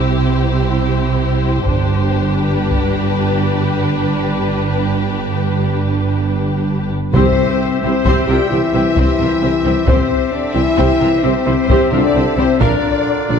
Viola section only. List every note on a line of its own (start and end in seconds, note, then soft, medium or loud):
0.00 1.63 E4 soft
1.68 6.94 D4 soft
7.15 7.36 C4 soft
7.15 7.36 G4 soft
7.83 7.92 C4 soft
7.83 7.91 E4 soft
8.07 8.27 C4 soft
8.07 8.27 G4 medium
8.30 8.38 C4 soft
8.30 8.38 F4 soft
8.52 8.60 C4 soft
8.52 8.60 G4 soft
8.74 8.82 C4 soft
8.74 8.82 E4 soft
8.97 9.18 C4 soft
8.97 9.18 G4 soft
9.21 9.29 C4 soft
9.21 9.29 F4 soft
9.43 9.51 C4 soft
9.43 9.51 G4 soft
9.65 9.73 C4 soft
9.65 9.73 E4 soft
9.87 10.09 C4 soft
9.87 10.08 G4 medium
10.54 10.62 C4 soft
10.54 10.63 E4 soft
10.77 10.99 C4 medium
10.77 10.99 G4 medium
10.99 11.08 C4 soft
10.99 11.07 F4 soft
11.23 11.31 C4 soft
11.23 11.31 G4 soft
11.46 11.54 C4 soft
11.46 11.54 E4 medium
11.69 11.91 C4 soft
11.69 11.91 G4 medium
11.93 12.01 C4 soft
11.93 12.01 F4 soft
12.15 12.24 C4 soft
12.15 12.23 G4 soft
12.38 12.46 C4 soft
12.38 12.46 E4 soft
12.60 12.82 D4 medium
12.60 12.82 A#4 medium
13.30 13.38 D4 soft
13.30 13.38 F4 soft